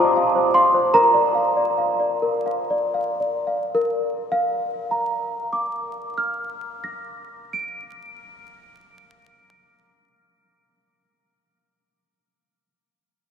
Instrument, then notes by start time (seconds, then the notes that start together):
celesta
Already playing: F4 A5
0.00 C5
0.17 F5
0.35 C5
0.54 F5 C6
0.74 C5
0.94 A#4 A#5
1.14 D5
1.35 F5
1.57 D5
1.78 F5
2.00 D5
2.22 A#4
2.46 F5
2.70 D5
2.94 F5
3.20 D5
3.47 F5
3.75 A#4
4.32 F5
4.91 A#5
5.53 D6
6.18 F6
6.84 A#6
7.53 D7